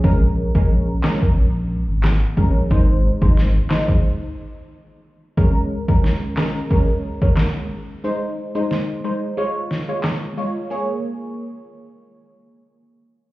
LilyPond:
<<
  \new Staff \with { instrumentName = "Synth pluck" } { \time 4/4 \key bes \minor \tempo 4 = 90 <aes des' bes'>8. <aes des' bes'>16 r8 <aes des' bes'>16 r4. r16 <aes des' bes'>16 r16 | <aes ees' c''>8. <aes ees' c''>16 r8 <aes ees' c''>16 r2 r16 | <aes des' bes'>8. <aes des' bes'>8. <aes des' bes'>8 <aes des' bes'>16 r8 <aes des' bes'>16 r4 | <aes ees' c''>8. <aes ees' c''>8. <aes ees' c''>8 <aes f' des''>16 r8 <aes f' des''>16 r8 <aes f' des''>16 r16 |
<bes aes' des''>1 | }
  \new Staff \with { instrumentName = "Sub bass" } { \clef bass \time 4/4 \key bes \minor bes,,8. bes,,8. r8 bes,,8. aes,,8. bes,,8 | aes,,8. aes,,8. r2 r8 | r1 | r1 |
r1 | }
  \new DrumStaff \with { instrumentName = "Drums" } \drummode { \time 4/4 bd8. bd16 r8 <hc sn>16 bd16 r4 <hc ss sn>8 bd8 | bd8. bd16 sn8 <hc sn>16 bd16 r4 r4 | bd8. bd16 sn8 <hc sn>8 bd8. bd16 <hc sn>4 | r4 sn4 r8 sn8 <hc sn>4 |
r4 r4 r4 r4 | }
>>